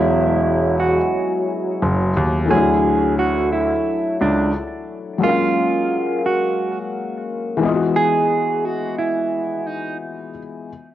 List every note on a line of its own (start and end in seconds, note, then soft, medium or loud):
0.00 0.97 E1 loud
0.00 2.44 F#3 medium
0.00 2.48 G#3 medium
0.00 2.46 B3 medium
0.00 0.76 E4 loud
0.00 2.49 E4 medium
0.00 2.47 F#4 medium
0.00 2.46 C#5 medium
0.00 2.48 D#5 medium
0.00 2.47 G#5 medium
0.80 1.32 F#4 medium
1.82 2.12 F#1 medium
2.17 2.46 D#2 medium
2.46 2.56 E3 medium
2.46 5.18 A3 medium
2.51 3.70 D2 medium
2.51 5.17 F#3 medium
2.51 5.20 D4 medium
2.51 3.14 G#4 loud
2.51 5.19 C#5 medium
2.56 5.22 E4 medium
3.19 3.49 F#4 medium
3.52 4.16 E4 medium
4.21 4.51 C#2 medium
4.21 4.52 D4 medium
5.18 7.55 F#3 medium
5.18 7.56 G#3 medium
5.23 7.58 A#3 medium
5.23 7.59 C#4 medium
5.23 6.21 F4 loud
5.29 7.60 F5 medium
6.26 6.78 F#4 medium
7.57 10.28 E3 medium
7.57 10.29 G#3 medium
7.62 10.30 B3 medium
7.62 10.32 D#5 medium
7.67 7.72 F4 medium
7.74 10.36 F#4 medium
7.96 8.65 G#4 loud
8.65 8.95 F#4 medium
8.98 9.67 E4 medium
9.67 9.97 D#4 medium